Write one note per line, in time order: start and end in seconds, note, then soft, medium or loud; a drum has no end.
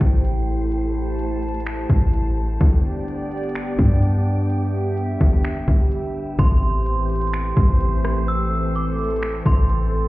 0.00 1.86 A1 loud
0.00 2.57 A3 medium
0.00 2.57 E4 medium
0.00 2.57 G4 medium
0.00 2.57 C5 medium
0.00 0.70 G5 medium
0.00 kick loud
0.00 closed hi-hat medium
0.25 closed hi-hat medium
0.72 2.59 A5 medium
0.72 closed hi-hat medium
1.19 closed hi-hat medium
1.43 closed hi-hat soft
1.48 closed hi-hat medium
1.54 closed hi-hat medium
1.60 closed hi-hat medium
1.66 finger snap loud
1.66 closed hi-hat medium
1.90 2.58 A1 loud
1.90 kick medium
1.90 closed hi-hat medium
2.14 closed hi-hat medium
2.61 3.75 G1 loud
2.61 6.35 B3 medium
2.61 6.35 D4 medium
2.61 6.35 G4 medium
2.61 4.48 D5 medium
2.61 4.48 D5 loud
2.61 6.35 G5 medium
2.61 kick loud
2.61 closed hi-hat medium
3.08 closed hi-hat medium
3.32 closed hi-hat soft
3.37 closed hi-hat medium
3.43 closed hi-hat medium
3.49 closed hi-hat medium
3.55 finger snap loud
3.55 closed hi-hat medium
3.79 5.17 G2 loud
3.79 kick loud
3.79 closed hi-hat medium
4.03 closed hi-hat medium
4.50 6.37 E5 medium
4.50 6.37 E5 loud
4.50 closed hi-hat medium
4.97 closed hi-hat medium
5.21 5.66 G1 loud
5.21 kick medium
5.21 open hi-hat medium
5.44 finger snap loud
5.44 closed hi-hat medium
5.68 6.36 G1 loud
5.68 kick medium
5.68 closed hi-hat medium
5.92 closed hi-hat medium
6.39 7.53 A1 loud
6.39 10.08 E3 medium
6.39 10.08 A3 medium
6.39 10.08 C4 medium
6.39 8.26 G4 medium
6.39 10.08 C5 loud
6.39 10.08 C5 medium
6.39 8.24 C6 loud
6.39 kick loud
6.39 closed hi-hat medium
6.86 closed hi-hat medium
7.10 closed hi-hat soft
7.16 closed hi-hat medium
7.21 closed hi-hat medium
7.27 closed hi-hat medium
7.33 finger snap loud
7.33 closed hi-hat medium
7.57 9.42 A1 loud
7.57 kick loud
7.57 closed hi-hat medium
7.81 closed hi-hat medium
8.05 cross-stick loud
8.28 10.08 A4 medium
8.28 8.72 E6 loud
8.28 closed hi-hat medium
8.75 9.42 D6 medium
8.75 closed hi-hat medium
8.99 closed hi-hat soft
9.05 closed hi-hat medium
9.10 closed hi-hat medium
9.16 closed hi-hat medium
9.22 finger snap loud
9.22 closed hi-hat medium
9.46 10.08 A1 loud
9.46 10.08 C6 medium
9.46 kick loud
9.46 closed hi-hat medium
9.70 closed hi-hat medium